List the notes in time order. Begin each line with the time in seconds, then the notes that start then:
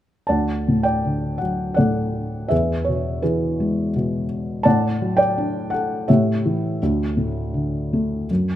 0.27 D2 D5 F#5 A5
0.68 A2
0.83 D5 G5
1.05 D3
1.38 F#3 F#5
1.74 A2 A4 D5 F#5
2.48 E2 G#4 B4 E5
2.85 B2 C#5
3.22 E3 E4 G#4 B4
3.60 G#3
3.96 B2
4.63 A2 D5 F#5 A5
5.01 F#3
5.17 D5 G5
5.38 D4
5.70 A4 F#5
6.08 A2 G4 C#5 E5
6.45 E3
6.83 D2
7.17 A2
7.54 D3
7.93 A3
8.31 F#2